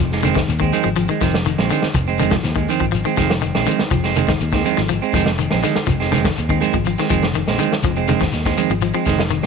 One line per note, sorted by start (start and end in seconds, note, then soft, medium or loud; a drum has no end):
0.00 0.42 F1 medium
0.00 0.20 F3 medium
0.12 0.23 G#3 soft
0.12 snare soft
0.12 closed hi-hat soft
0.12 shekere soft
0.23 0.34 D3 medium
0.23 0.39 D#3 medium
0.23 0.39 G#3 medium
0.23 0.39 C4 medium
0.23 closed hi-hat soft
0.23 high conga loud
0.23 low conga medium
0.23 shekere medium
0.35 0.57 D#3 medium
0.35 kick medium
0.35 snare medium
0.35 closed hi-hat soft
0.35 shekere soft
0.48 0.70 D#2 medium
0.48 closed hi-hat medium
0.48 shekere medium
0.60 0.81 D#3 medium
0.60 0.72 G#3 soft
0.60 0.73 C4 medium
0.60 kick medium
0.60 closed hi-hat soft
0.60 shekere soft
0.72 0.88 D#3 medium
0.72 0.88 G#3 medium
0.72 0.89 C4 medium
0.72 open hi-hat medium
0.72 high conga medium
0.72 shekere medium
0.84 1.07 G#1 medium
0.84 0.95 F3 medium
0.84 closed hi-hat soft
0.84 shekere soft
0.96 1.08 F3 medium
0.96 closed hi-hat medium
0.96 high conga medium
0.96 shekere medium
1.09 1.20 D#3 medium
1.09 1.22 G#3 soft
1.09 closed hi-hat soft
1.09 shekere soft
1.21 1.54 F1 loud
1.21 1.36 D#3 medium
1.21 1.43 F3 medium
1.21 1.37 C4 medium
1.21 kick medium
1.21 snare soft
1.21 closed hi-hat medium
1.21 shekere medium
1.34 snare medium
1.34 high conga medium
1.34 shekere soft
1.46 1.67 D#3 medium
1.46 closed hi-hat medium
1.46 shekere medium
1.58 1.69 A#1 medium
1.58 1.71 G#3 soft
1.58 1.71 C4 medium
1.58 snare medium
1.58 closed hi-hat soft
1.58 high conga medium
1.58 shekere soft
1.70 1.92 D3 medium
1.70 1.86 D#3 medium
1.70 1.86 G#3 medium
1.70 1.87 C4 medium
1.70 open hi-hat medium
1.70 shekere medium
1.82 muted fingered electric bass stroke soft
1.82 snare medium
1.82 closed hi-hat soft
1.82 shekere soft
1.94 2.38 F1 medium
1.94 muted clean electric guitar stroke medium
1.94 kick medium
1.94 closed hi-hat medium
1.94 low conga medium
1.94 shekere medium
2.07 2.19 G#3 soft
2.07 2.19 C4 medium
2.07 closed hi-hat soft
2.07 shekere soft
2.19 2.30 D3 medium
2.19 2.34 D#3 medium
2.19 2.35 G#3 medium
2.19 2.35 C4 medium
2.19 closed hi-hat medium
2.19 high conga loud
2.19 low conga medium
2.19 shekere medium
2.31 2.53 F3 medium
2.31 kick medium
2.31 snare medium
2.31 closed hi-hat soft
2.31 low conga medium
2.31 shekere soft
2.43 2.66 D#2 medium
2.43 snare soft
2.43 closed hi-hat medium
2.43 shekere medium
2.56 2.77 D#3 medium
2.56 2.69 G#3 soft
2.56 kick medium
2.56 closed hi-hat soft
2.56 shekere soft
2.68 2.84 D#3 medium
2.68 2.84 C4 medium
2.68 open hi-hat medium
2.68 high conga medium
2.68 shekere medium
2.80 3.03 G#1 medium
2.80 2.91 F3 medium
2.80 kick medium
2.80 closed hi-hat soft
2.80 shekere soft
2.92 3.03 F3 medium
2.92 closed hi-hat medium
2.92 high conga medium
2.92 shekere medium
3.05 3.16 D#3 medium
3.05 3.16 G#3 soft
3.05 3.17 C4 medium
3.05 shekere soft
3.17 3.51 F1 medium
3.17 3.32 D#3 medium
3.17 3.39 F3 medium
3.17 3.33 G#3 medium
3.17 3.33 C4 medium
3.17 kick medium
3.17 snare soft
3.17 closed hi-hat medium
3.17 shekere medium
3.30 snare medium
3.30 closed hi-hat soft
3.30 high conga medium
3.30 shekere soft
3.42 3.63 D#3 medium
3.42 closed hi-hat medium
3.42 shekere medium
3.55 3.66 A#1 medium
3.55 3.66 G#3 soft
3.55 3.67 C4 medium
3.55 snare medium
3.55 closed hi-hat soft
3.55 high conga medium
3.55 shekere soft
3.66 3.88 D3 medium
3.66 3.82 D#3 medium
3.66 3.82 G#3 medium
3.66 3.82 C4 medium
3.66 closed hi-hat soft
3.66 shekere medium
3.79 muted fingered electric bass stroke soft
3.79 snare medium
3.79 closed hi-hat soft
3.79 shekere soft
3.91 4.34 F1 medium
3.91 4.12 F3 medium
3.91 kick medium
3.91 closed hi-hat medium
3.91 low conga medium
3.91 shekere medium
4.03 4.16 G#3 soft
4.03 4.16 C4 medium
4.03 snare soft
4.03 closed hi-hat soft
4.03 shekere soft
4.15 4.31 D#3 medium
4.15 4.31 G#3 medium
4.15 4.32 C4 medium
4.15 closed hi-hat soft
4.15 high conga medium
4.15 low conga medium
4.15 shekere medium
4.28 4.49 D#3 medium
4.28 kick medium
4.28 snare medium
4.28 closed hi-hat soft
4.28 shekere soft
4.40 4.62 D#2 medium
4.40 closed hi-hat medium
4.40 shekere medium
4.52 4.74 D#3 medium
4.52 4.64 G#3 soft
4.52 4.65 C4 medium
4.52 kick medium
4.52 snare soft
4.52 closed hi-hat soft
4.52 shekere soft
4.64 4.80 D#3 medium
4.64 4.80 G#3 medium
4.64 4.80 C4 medium
4.64 open hi-hat medium
4.64 high conga medium
4.64 shekere medium
4.77 4.99 G#1 medium
4.77 4.88 F3 medium
4.77 snare soft
4.77 closed hi-hat soft
4.77 shekere soft
4.88 5.00 F3 medium
4.88 closed hi-hat medium
4.88 shekere medium
5.01 5.13 G#3 soft
5.01 5.14 C4 medium
5.01 closed hi-hat soft
5.01 shekere soft
5.13 5.46 F1 medium
5.13 5.29 D#3 medium
5.13 5.35 F3 medium
5.13 5.29 G#3 medium
5.13 5.29 C4 medium
5.13 kick medium
5.13 snare soft
5.13 closed hi-hat soft
5.13 shekere medium
5.26 snare medium
5.26 high conga medium
5.26 shekere soft
5.38 5.60 D#3 medium
5.38 closed hi-hat medium
5.38 shekere medium
5.50 5.63 A#1 medium
5.50 5.62 G#3 soft
5.50 5.62 C4 medium
5.50 snare medium
5.50 closed hi-hat soft
5.50 high conga medium
5.50 shekere soft
5.63 5.84 D3 medium
5.63 5.78 D#3 medium
5.63 5.78 G#3 medium
5.63 muted clean electric guitar stroke medium
5.63 snare soft
5.63 open hi-hat medium
5.63 shekere medium
5.75 muted fingered electric bass stroke soft
5.75 snare medium
5.75 closed hi-hat soft
5.75 shekere soft
5.87 6.31 F1 medium
5.87 6.08 F3 medium
5.87 kick medium
5.87 closed hi-hat medium
5.87 low conga medium
5.87 shekere medium
6.00 6.11 G#3 soft
6.00 6.11 C4 medium
6.00 snare soft
6.00 closed hi-hat soft
6.00 shekere soft
6.11 6.23 D3 medium
6.11 6.27 D#3 medium
6.11 6.27 G#3 medium
6.11 6.27 C4 medium
6.11 snare soft
6.11 closed hi-hat soft
6.11 high conga medium
6.11 low conga medium
6.11 shekere medium
6.24 6.46 D#3 medium
6.24 kick medium
6.24 snare medium
6.24 closed hi-hat soft
6.24 shekere soft
6.36 6.59 D#2 medium
6.36 closed hi-hat medium
6.36 shekere medium
6.49 6.71 D#3 medium
6.49 6.60 G#3 soft
6.49 6.61 C4 medium
6.49 kick medium
6.49 closed hi-hat soft
6.49 shekere soft
6.61 6.76 D#3 medium
6.61 6.76 G#3 medium
6.61 6.76 C4 medium
6.61 open hi-hat medium
6.61 high conga medium
6.61 shekere medium
6.74 6.95 G#1 medium
6.74 6.84 F3 medium
6.74 kick medium
6.74 closed hi-hat soft
6.74 shekere soft
6.85 6.97 F3 medium
6.85 closed hi-hat medium
6.85 high conga medium
6.85 shekere medium
6.98 7.09 D#3 medium
6.98 7.09 G#3 soft
6.98 7.10 C4 medium
6.98 snare soft
6.98 shekere soft
7.10 7.43 F1 medium
7.10 7.25 D#3 medium
7.10 7.31 F3 medium
7.10 7.25 G#3 medium
7.10 7.26 C4 medium
7.10 kick medium
7.10 closed hi-hat soft
7.10 shekere medium
7.22 snare medium
7.22 closed hi-hat soft
7.22 high conga medium
7.22 shekere soft
7.34 7.56 D#3 medium
7.34 closed hi-hat medium
7.34 shekere medium
7.47 7.58 A#1 medium
7.47 7.58 G#3 soft
7.47 7.59 C4 medium
7.47 snare medium
7.47 closed hi-hat soft
7.47 high conga medium
7.47 shekere soft
7.59 7.80 D3 medium
7.59 7.74 D#3 medium
7.59 7.74 G#3 medium
7.59 7.74 C4 medium
7.59 closed hi-hat soft
7.59 shekere medium
7.72 muted fingered electric bass stroke soft
7.72 snare medium
7.72 closed hi-hat soft
7.72 shekere soft
7.83 8.27 F1 medium
7.83 8.05 F3 medium
7.83 kick medium
7.83 closed hi-hat medium
7.83 low conga medium
7.83 shekere medium
7.96 8.07 G#3 soft
7.96 8.08 C4 medium
7.96 closed hi-hat soft
7.96 shekere soft
8.08 8.19 D3 medium
8.08 8.23 D#3 medium
8.08 8.23 G#3 medium
8.08 8.24 C4 medium
8.08 closed hi-hat soft
8.08 high conga medium
8.08 low conga medium
8.08 shekere medium
8.21 8.42 D#3 medium
8.21 kick medium
8.21 snare medium
8.21 closed hi-hat soft
8.21 low conga medium
8.21 shekere soft
8.32 8.54 D#2 medium
8.32 snare soft
8.32 closed hi-hat medium
8.32 shekere medium
8.45 8.67 D#3 medium
8.45 8.56 G#3 soft
8.45 8.57 C4 medium
8.45 kick medium
8.45 snare soft
8.45 closed hi-hat soft
8.45 shekere soft
8.57 8.72 D#3 medium
8.57 8.72 G#3 medium
8.57 8.73 C4 medium
8.57 open hi-hat medium
8.57 high conga medium
8.57 shekere medium
8.70 8.91 G#1 medium
8.70 8.81 F3 medium
8.70 closed hi-hat soft
8.70 shekere soft
8.81 8.93 F3 medium
8.81 closed hi-hat medium
8.81 shekere medium
8.94 9.05 F3 medium
8.94 9.06 G#3 soft
8.94 9.06 C4 medium
8.94 closed hi-hat soft
8.94 shekere soft
9.06 9.39 F1 medium
9.06 9.21 D#3 medium
9.06 9.21 G#3 medium
9.06 9.22 C4 medium
9.06 kick medium
9.06 snare soft
9.06 closed hi-hat medium
9.06 shekere medium
9.18 snare medium
9.18 high conga medium
9.18 shekere soft
9.30 9.46 D#3 medium
9.30 closed hi-hat medium
9.30 shekere medium
9.43 9.46 A#1 medium
9.43 closed hi-hat soft
9.43 high conga medium
9.43 shekere soft